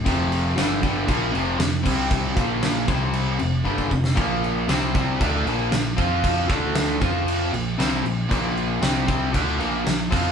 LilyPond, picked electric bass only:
\new Staff \with { instrumentName = "Picked electric bass" } { \clef bass \time 4/4 \key bes \lydian \tempo 4 = 116 f,,4 g,,8 g,,8 bes,,8 f,,8 f,,8 c,8~ | c,8 bes,,4 c,4 f,,8 g,,8 f,,8 | bes,,4 c,8 c,8 d,8 bes,,8 bes,,8 f,8~ | f,8 d,4 f,4 bes,,8 c,8 bes,,8 |
bes,,4 c,8 c,8 d,8 bes,,8 bes,,8 f,8 | }